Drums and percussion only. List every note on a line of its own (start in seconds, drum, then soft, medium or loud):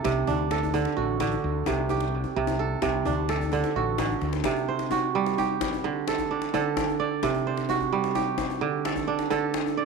0.05 djembe slap medium
0.05 djembe bass medium
0.27 djembe tone medium
0.40 djembe slap soft
0.51 djembe slap medium
0.63 djembe bass soft
0.74 djembe tone medium
0.85 djembe slap soft
1.20 djembe slap medium
1.20 djembe bass medium
1.32 djembe slap soft
1.32 djembe tone soft
1.66 djembe slap medium
1.66 djembe bass medium
1.89 djembe slap soft
1.89 djembe tone medium
2.00 djembe slap soft
2.24 djembe slap soft
2.24 djembe bass soft
2.47 djembe slap medium
2.47 djembe tone soft
2.82 djembe slap medium
2.82 djembe bass medium
3.05 djembe tone medium
3.29 djembe slap medium
3.41 djembe bass soft
3.52 djembe tone medium
3.64 djembe slap soft
3.75 djembe slap soft
3.98 djembe slap medium
3.98 djembe bass medium
4.10 djembe bass soft
4.21 djembe slap soft
4.33 djembe slap medium
4.44 djembe slap medium
4.44 djembe bass medium
4.57 djembe tone medium
4.79 djembe slap medium
4.91 djembe tone medium
5.03 djembe slap soft
5.26 djembe slap medium
5.38 djembe tone medium
5.61 djembe slap medium
5.61 djembe bass medium
5.73 djembe tone medium
5.85 djembe slap soft
6.08 djembe slap medium
6.18 djembe slap soft
6.18 djembe tone medium
6.18 djembe bass medium
6.30 djembe slap soft
6.42 djembe slap medium
6.54 djembe slap soft
6.54 djembe tone medium
6.77 djembe slap medium
6.77 djembe bass medium
6.88 djembe tone medium
7.23 djembe slap medium
7.23 djembe bass medium
7.35 djembe tone soft
7.57 djembe slap soft
7.69 djembe tone medium
7.81 djembe slap soft
7.81 djembe bass medium
8.04 djembe slap medium
8.15 djembe tone medium
8.38 djembe slap medium
8.38 djembe bass medium
8.50 djembe tone medium
8.62 djembe slap soft
8.85 djembe slap medium
8.96 djembe slap soft
8.96 djembe tone medium
8.96 djembe bass medium
9.07 djembe slap soft
9.19 djembe slap medium
9.31 djembe slap soft
9.31 djembe tone medium
9.54 djembe slap medium
9.66 djembe tone medium